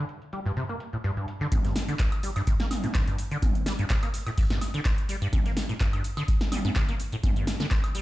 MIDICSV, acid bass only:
0, 0, Header, 1, 2, 480
1, 0, Start_track
1, 0, Key_signature, -2, "minor"
1, 0, Tempo, 476190
1, 1530, Time_signature, 4, 2, 24, 8
1, 8081, End_track
2, 0, Start_track
2, 0, Title_t, "Acid bass"
2, 0, Program_c, 0, 38
2, 330, Note_on_c, 0, 55, 75
2, 401, Note_off_c, 0, 55, 0
2, 459, Note_on_c, 0, 43, 99
2, 521, Note_off_c, 0, 43, 0
2, 571, Note_on_c, 0, 48, 102
2, 642, Note_off_c, 0, 48, 0
2, 699, Note_on_c, 0, 58, 75
2, 760, Note_off_c, 0, 58, 0
2, 939, Note_on_c, 0, 45, 77
2, 976, Note_off_c, 0, 45, 0
2, 1051, Note_on_c, 0, 43, 100
2, 1121, Note_off_c, 0, 43, 0
2, 1178, Note_on_c, 0, 43, 76
2, 1271, Note_off_c, 0, 43, 0
2, 1419, Note_on_c, 0, 50, 103
2, 1480, Note_off_c, 0, 50, 0
2, 1530, Note_on_c, 0, 43, 103
2, 1601, Note_off_c, 0, 43, 0
2, 1659, Note_on_c, 0, 43, 81
2, 1751, Note_off_c, 0, 43, 0
2, 1899, Note_on_c, 0, 50, 101
2, 1960, Note_off_c, 0, 50, 0
2, 2250, Note_on_c, 0, 55, 77
2, 2321, Note_off_c, 0, 55, 0
2, 2379, Note_on_c, 0, 43, 102
2, 2441, Note_off_c, 0, 43, 0
2, 2490, Note_on_c, 0, 48, 102
2, 2561, Note_off_c, 0, 48, 0
2, 2618, Note_on_c, 0, 58, 76
2, 2680, Note_off_c, 0, 58, 0
2, 2858, Note_on_c, 0, 45, 80
2, 2895, Note_off_c, 0, 45, 0
2, 2969, Note_on_c, 0, 43, 102
2, 3041, Note_off_c, 0, 43, 0
2, 3098, Note_on_c, 0, 43, 78
2, 3190, Note_off_c, 0, 43, 0
2, 3339, Note_on_c, 0, 50, 100
2, 3400, Note_off_c, 0, 50, 0
2, 3688, Note_on_c, 0, 55, 77
2, 3760, Note_off_c, 0, 55, 0
2, 3818, Note_on_c, 0, 43, 105
2, 3880, Note_off_c, 0, 43, 0
2, 3929, Note_on_c, 0, 48, 103
2, 4001, Note_off_c, 0, 48, 0
2, 4058, Note_on_c, 0, 58, 79
2, 4120, Note_off_c, 0, 58, 0
2, 4299, Note_on_c, 0, 45, 79
2, 4336, Note_off_c, 0, 45, 0
2, 4410, Note_on_c, 0, 43, 99
2, 4481, Note_off_c, 0, 43, 0
2, 4540, Note_on_c, 0, 43, 78
2, 4631, Note_off_c, 0, 43, 0
2, 4779, Note_on_c, 0, 50, 107
2, 4840, Note_off_c, 0, 50, 0
2, 5131, Note_on_c, 0, 55, 76
2, 5201, Note_off_c, 0, 55, 0
2, 5259, Note_on_c, 0, 43, 104
2, 5320, Note_off_c, 0, 43, 0
2, 5370, Note_on_c, 0, 48, 102
2, 5441, Note_off_c, 0, 48, 0
2, 5498, Note_on_c, 0, 58, 79
2, 5560, Note_off_c, 0, 58, 0
2, 5737, Note_on_c, 0, 45, 78
2, 5775, Note_off_c, 0, 45, 0
2, 5850, Note_on_c, 0, 43, 101
2, 5921, Note_off_c, 0, 43, 0
2, 5979, Note_on_c, 0, 43, 80
2, 6071, Note_off_c, 0, 43, 0
2, 6220, Note_on_c, 0, 50, 105
2, 6281, Note_off_c, 0, 50, 0
2, 6572, Note_on_c, 0, 55, 79
2, 6642, Note_off_c, 0, 55, 0
2, 6699, Note_on_c, 0, 43, 108
2, 6760, Note_off_c, 0, 43, 0
2, 6811, Note_on_c, 0, 48, 102
2, 6882, Note_off_c, 0, 48, 0
2, 6940, Note_on_c, 0, 58, 76
2, 7001, Note_off_c, 0, 58, 0
2, 7180, Note_on_c, 0, 45, 79
2, 7216, Note_off_c, 0, 45, 0
2, 7291, Note_on_c, 0, 43, 105
2, 7361, Note_off_c, 0, 43, 0
2, 7419, Note_on_c, 0, 43, 79
2, 7511, Note_off_c, 0, 43, 0
2, 7660, Note_on_c, 0, 50, 101
2, 7721, Note_off_c, 0, 50, 0
2, 8011, Note_on_c, 0, 55, 74
2, 8081, Note_off_c, 0, 55, 0
2, 8081, End_track
0, 0, End_of_file